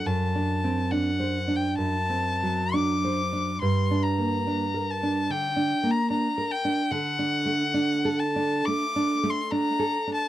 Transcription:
<<
  \new Staff \with { instrumentName = "Violin" } { \time 4/4 \key d \phrygian \tempo 4 = 70 a''4 fis''8. g''16 a''4 d'''4 | c'''8 bes''4 a''8 g''8. bes''16 bes''8 g''8 | fis''4. a''8 d'''8. c'''16 bes''8. a''16 | }
  \new Staff \with { instrumentName = "Nylon-string guitar" } { \time 4/4 \key d \phrygian \tuplet 3/2 { fis,8 d'8 c'8 d'8 c''8 d'8 fis,8 c'8 fis8 d'8 c''8 d'8 } | \tuplet 3/2 { g,8 d'8 bes8 d'8 bes'8 d'8 d8 d'8 bes8 d'8 bes'8 d'8 } | \tuplet 3/2 { d8 d'8 a8 d'8 a'8 d'8 a8 d'8 a8 d'8 a'8 d'8 } | }
>>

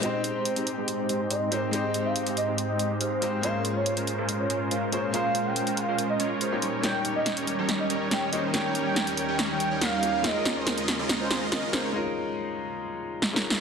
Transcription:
<<
  \new Staff \with { instrumentName = "Soft synth lead" } { \time 4/4 \key aes \major \tempo 4 = 141 ees''8 r16 c''8 r4 c''8. ees''8 c''8 | ees''8. f''8 r16 ees''8 r16 ees''8 r16 c''4 | f''8 r16 des''8 r4 des''8 r16 f''16 r16 des''16 r16 | f''8. g''8. f''8 r16 ees''8 r16 c''8 r8 |
g''8 r16 ees''8 r4 ees''8 r16 g''16 r16 ees''16 r16 | g''8 r16 g''8 r16 g''8 r16 g''8. f''4 | ees''8. c''8 r4 c''8 r16 ees''16 r16 c''16 r16 | r1 | }
  \new Staff \with { instrumentName = "Grand piano" } { \time 4/4 \key aes \major <aes c' ees' g' c''>2.~ <aes c' ees' g' c''>8 <aes c' ees' g' c''>8 | <aes c' ees' g' c''>2.~ <aes c' ees' g' c''>8 <aes c' ees' g' c''>8 | <bes des' f' aes' c''>2.~ <bes des' f' aes' c''>8 <bes des' f' aes' c''>8 | <bes des' f' aes' c''>2.~ <bes des' f' aes' c''>16 <bes des' ees' g' des''>8. |
<bes des' ees' g' des''>2.~ <bes des' ees' g' des''>8 <bes des' ees' g' des''>8 | <bes des' ees' g' des''>2.~ <bes des' ees' g' des''>8 <bes des' ees' g' des''>8 | <aes des' ees' f' bes'>2.~ <aes des' ees' f' bes'>8 <aes des' ees' f' bes'>8 | <aes des' ees' f' bes'>2.~ <aes des' ees' f' bes'>16 <aes des' ees' f' bes'>8. | }
  \new Staff \with { instrumentName = "Supersaw synth" } { \time 4/4 \key aes \major <aes c' ees' g' c''>4~ <aes c' ees' g' c''>16 <aes c' ees' g' c''>8 <aes c' ees' g' c''>8. <aes c' ees' g' c''>8 <aes c' ees' g' c''>8 <aes c' ees' g' bes'>8 | <aes c' ees' g' c''>4~ <aes c' ees' g' c''>16 <aes c' ees' g' c''>8 <aes c' ees' g' c''>4 <aes c' ees' g' c''>16 <aes c' ees' g' f''>4 | <aes des' f' bes' c''>4~ <aes des' f' bes' c''>16 <aes des' f' bes' c''>8 <aes des' f' bes' c''>8. <aes des' f' bes' c''>8 <aes des' f' bes' c''>8 <aes des' f' bes' c''>8 | <aes des' f' bes' c''>4~ <aes des' f' bes' c''>16 <aes des' f' bes' c''>8 <aes des' f' bes' c''>8. <aes des' f' bes' des''>4 <g des' ees' bes' des''>8 |
<g des' ees' bes' des''>4~ <g des' ees' bes' des''>16 <g des' ees' bes' des''>8 <g des' ees' bes' des''>8. <g des' ees' bes' des''>8 <g des' ees' bes' des''>8 <g des' ees' bes' c''>8 | <g des' ees' bes' des''>4~ <g des' ees' bes' des''>16 <g des' ees' bes' des''>8 <g des' ees' bes' des''>4 <g des' ees' bes' des''>16 <g des' ees' bes' f''>4 | <aes des' f' bes' ees''>4~ <aes des' f' bes' ees''>16 <aes des' f' bes' ees''>8 <aes des' f' bes' ees''>8. <aes des' f' bes' ees''>8 <aes des' f' bes' ees''>8 <aes des' f' bes' des''>8 | r1 | }
  \new Staff \with { instrumentName = "Ambient pad" } { \time 4/4 \key aes \major << { <aes, aes c''>1~ | <aes, aes c''>1 | <bes, aes bes'>1~ | <bes, aes bes'>2.~ <bes, aes bes'>8 <ees, ees g'>8~ |
<ees, ees g'>1~ | <ees, ees g'>1 | <des bes f'>1 | r1 | } \\ { g'1~ | g'1 | des'1~ | des'1~ |
des'1~ | des'1 | ees'1 | r1 | } >> }
  \new DrumStaff \with { instrumentName = "Drums" } \drummode { \time 4/4 hh8 hh8 hh16 hh16 hh8 hh8 hh8 hh8 hh8 | hh8 hh8 hh16 hh16 hh8 hh8 hh8 hh8 hh8 | hh8 hh8 hh16 hh16 hh8 hh8 hh8 hh8 hh8 | hh8 hh8 hh16 hh16 hh8 hh8 hh8 hh8 hh8 |
<hh sn>8 hh8 <hh sn>16 hh16 hh8 <hh sn>8 hh8 <hh sn>8 hh8 | <hh sn>8 hh8 <hh sn>16 hh16 hh8 <hh sn>8 hh8 <hh sn>8 hh8 | <hh sn>8 <hh sn>8 <hh sn>16 hh16 <hh sn>8 <hh sn>8 <hh sn>8 <hh sn>8 <hh sn>8 | r4 r4 r4 \tuplet 3/2 { sn8 sn8 sn8 } | }
>>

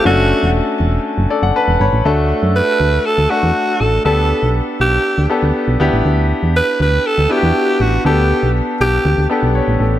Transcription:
<<
  \new Staff \with { instrumentName = "Alto saxophone" } { \time 4/4 \key d \major \tempo 4 = 120 fis'4 r2. | r4 b'4 a'8 fis'4 a'8 | a'4 r8 g'4 r4. | r4 b'8 b'8 a'8 g'4 fis'8 |
g'4 r8 g'4 r4. | }
  \new Staff \with { instrumentName = "Grand piano" } { \time 4/4 \key d \major << { r2 r8 <a' d''>16 fis''16 <b' a''>8 <cis'' b''>8~ | <cis'' b''>8 r2. r8 | r1 | r1 |
r2. cis''8 a'8 | } \\ { <a cis' d' fis' a'>4. r2 r8 | <a d' fis' a'>4. r4 <a d' fis' a'>4 r8 | <b d' g' a'>4. r4 <b d' g' a'>4 <b d' e' g'>8~ | <b d' e' g'>4 r4. <b d' e' fis' g'>4 r8 |
<b d' g' a'>4. r4 <b d' g' a'>4 r8 | } >> }
  \new Staff \with { instrumentName = "FM bass" } { \clef bass \time 4/4 \key d \major fis,,8. e,,8 r16 e,,8 r16 fis,,16 r16 fis,,16 r16 e,,16 g,,16 a,,16 | d,8. fis,8 r16 d,8 r16 d,16 r16 e,16 r8 a,,8 | d,8. b,,8 r16 b,,8 r16 d,16 r16 d,16 r16 b,,16 d,16 a,,16 | d,8. e,8 r16 d,8 r16 d,16 r16 e,16 r8 a,,8 |
d,8. b,,8 r16 b,,8 d,16 d,16 r16 b,,8 a,,16 a,,8 | }
>>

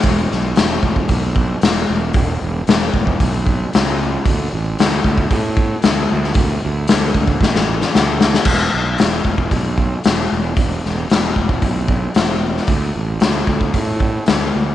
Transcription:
<<
  \new Staff \with { instrumentName = "Fingered electric bass" } { \clef bass \time 4/4 \key d \mixolydian \tempo 4 = 114 e,,8 b,,8 e,,8 e,,8 b,,4 e,,8 e,,8 | e,,8 e,,8 e,,8 e,,8 b,,4 cis,4 | d,8 a,,8 d,8 d,8 a,4 d,8 d,8 | d,8 d,8 d,8 d,8 a,,4 d,4 |
e,,8 b,,8 e,,8 e,,8 b,,4 e,,8 e,,8 | e,,8 e,,8 e,,8 e,,8 b,,4 e,,4 | d,8 a,,8 d,8 d,8 a,4 d,8 d,8 | }
  \new DrumStaff \with { instrumentName = "Drums" } \drummode { \time 4/4 <hho bd>8 sn8 <hho sn>8 bd16 bd16 <hho bd>8 bd8 <hho sn>4 | <hho bd>4 <hho sn>8 bd16 bd16 <hho bd>8 bd8 <hho sn>4 | <hho bd>4 <hho sn>8 bd16 bd16 <hho bd>8 bd8 <hho sn>8. sn16 | <hho bd>4 <hho sn>8 bd16 bd16 <bd sn>16 sn8 sn16 sn8 sn16 sn16 |
<cymc bd>4 <hho sn>8 bd16 bd16 <hho bd>8 bd8 <hho sn>4 | <hho bd>8 sn8 <hho sn>8 bd16 bd16 <hho bd>8 bd8 <hho sn>8. sn16 | <hho bd>4 <hho sn>8 bd16 bd16 <hho bd>8 bd8 <hho sn>4 | }
>>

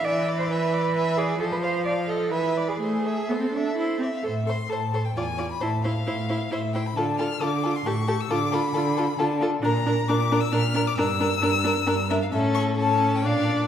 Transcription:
<<
  \new Staff \with { instrumentName = "Violin" } { \time 3/4 \key a \minor \tempo 4 = 133 gis''8 b''8 gis''8 b''8 gis''8 b''8 | a''8 c'''8 a''8 f''8 gis''8 b''8 | c'''8 a''8 c'''8 a''8 c'''8 d''16 f''16 | e''8 c'''8 a''8. g''16 gis''8. b''16 |
a''8 f''4. e''8 g''16 b''16 | a''8 f'''8 d'''8. c'''16 cis'''8. e'''16 | d'''8 b''4. a''8 r8 | \key a \phrygian bes''4 d'''8. e'''16 f'''8. d'''16 |
e'''2~ e'''8 e''16 f''16 | e''8 cis'''8 a''8. g''16 f''8 d''8 | }
  \new Staff \with { instrumentName = "Violin" } { \time 3/4 \key a \minor e''8 d''8 e''8 d''8 e''8 d''8 | c''8 f''8 f''8 ees''8 e''8 d''8 | c''8 e''8 c''8 e''8 c''8 e''8 | c''8 c''8 c''8 c''8 d''8 d''8 |
c''8 c''8 c''8 c''8 c''8 c''8 | a'8 a'8 a'8 a'8 a'8 a'8 | a'8 a'8 a'8 a'8 a'8 a'8 | \key a \phrygian bes'8 bes'8 bes'8 bes'8 bes'8 bes'8 |
bes'8 bes'8 bes'8 bes'8 bes'8 bes'8 | a'4 a'4 d''4 | }
  \new Staff \with { instrumentName = "Viola" } { \time 3/4 \key a \minor e2. | f2 e4 | a4 b16 c'16 d'8 e'8 c'8 | a'8 a'8 a'8 a'8 f'8 f'8 |
e'8 e'8 e'8 e'8 e'8 e'8 | f'8 f'8 f'8 f'8 g'8 g'8 | f'8 f'8 f'8 f'8 f'8 f'8 | \key a \phrygian d'8 d'8 d'8 d'8 d'8 d'8 |
d'8 d'8 d'8 d'8 d'8 d'8 | cis'4 cis'4 d'4 | }
  \new Staff \with { instrumentName = "Cello" } { \clef bass \time 3/4 \key a \minor d''8. c''16 b'4. gis'8 | a'16 b'16 c''8 d''8 a'8 b'8. gis'16 | gis'4 a'4. r8 | a,4 a,4 e,4 |
a,4 a,4 a,4 | d4 d4 a,4 | d4 d4 d4 | \key a \phrygian bes,4 bes,4 bes,4 |
g,4 g,4 g,4 | a,2 bes,4 | }
>>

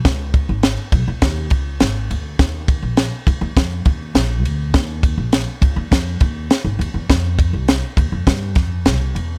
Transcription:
<<
  \new Staff \with { instrumentName = "Upright bass" } { \clef bass \time 4/4 \key des \mixolydian \tempo 4 = 102 des,8. aes,,8 r16 ces,16 des,16 ees,8 des,8 aes,,8 d,8 | ees,8. bes,,8 r16 des,16 ees,16 f,8 ees,8 bes,,8 d,8 | ees,8. bes,,8 r16 des,16 ees,16 f,8 ees,8 r16 aes,,16 ees,16 fes,16 | f,8. c,8 r16 ees,16 f,16 g,8 f,8 c,8 fes,8 | }
  \new DrumStaff \with { instrumentName = "Drums" } \drummode { \time 4/4 <bd cymr sn>8 <bd cymr>8 <cymr sn>8 <bd cymr>8 <bd cymr sn>8 <bd cymr>8 <cymr sn>8 cymr8 | <bd cymr sn>8 <bd cymr>8 <cymr sn>8 <bd cymr>8 <bd cymr sn>8 <bd cymr>8 <cymr sn>8 cymr8 | <bd cymr sn>8 <bd cymr>8 <cymr sn>8 <bd cymr>8 <bd cymr sn>8 <bd cymr>8 <cymr sn>8 cymr8 | <bd cymr sn>8 <bd cymr>8 <cymr sn>8 <bd cymr>8 <bd cymr sn>8 <bd cymr sn>8 <cymr sn>8 cymr8 | }
>>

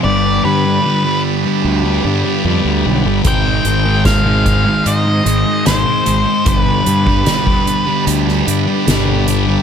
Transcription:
<<
  \new Staff \with { instrumentName = "Lead electric guitar" } { \time 4/4 \tempo 4 = 75 d''8 b'4 r2 r8 | g''4 f''4 ees''4 c''4 | b'2 r2 | }
  \new Staff \with { instrumentName = "Transistor combo organ" } { \time 4/4 <g b d' b'>1 | <aes c' ees' c''>1 | <g b d' b'>1 | }
  \new Staff \with { instrumentName = "Distorted electric guitar" } { \clef bass \time 4/4 <g, d g>8 <g, d g>16 <d g>16 <g, d g>16 <d g>8 <d g>8 <d g>16 <g, d g>16 <d g>16 <g, d g>8 <g, d g>16 <d g>16 | <aes, ees aes>8 <aes, ees aes>16 <ees aes>16 <aes, ees aes>16 <ees aes>8 <ees aes>8 <ees aes>16 <aes, ees aes>16 <ees aes>16 <aes, ees aes>8 <aes, ees aes>16 <ees aes>16 | <g, d g>8 <g, d g>16 <d g>16 <g, d g>16 <d g>8 <d g>8 <d g>16 <g, d g>16 <d g>16 <g, d g>8 <g, d g>16 <d g>16 | }
  \new Staff \with { instrumentName = "Fingered electric bass" } { \clef bass \time 4/4 g,,8 g,8 r4 d,8 g,16 r16 f,16 d,16 b,,16 g,,16 | aes,,8 aes,,4. aes,8 aes,,16 r16 aes,,16 r16 aes,,16 r16 | g,,8 g,8 r4 d,8 g,16 r16 g,,4 | }
  \new DrumStaff \with { instrumentName = "Drums" } \drummode { \time 4/4 r4 r4 r4 r4 | <hh bd>8 hh8 <hh bd sn>8 <hh bd>8 hh8 hh8 <hh sn>8 hh8 | <hh bd>8 hh16 bd16 <hh sn>16 bd16 hh8 hh16 sn16 hh8 <hh sn>8 hh8 | }
>>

